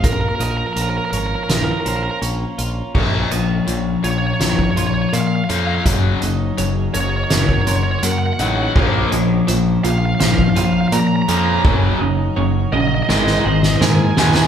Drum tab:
CC |----------------|x---------------|----------------|x---------------|
HH |x-x-x-x-x-x-x-x-|--x-x-x-x-x-x-x-|x-x-x-x-x-x-x-x-|--x-x-x-x-x-x-x-|
SD |--------o-------|--------o-------|--------o-------|--------o-------|
BD |o---------------|o--------o------|o--------o------|o--------o------|

CC |----------------|
HH |----------------|
SD |--------oo-oo-oo|
BD |o---------------|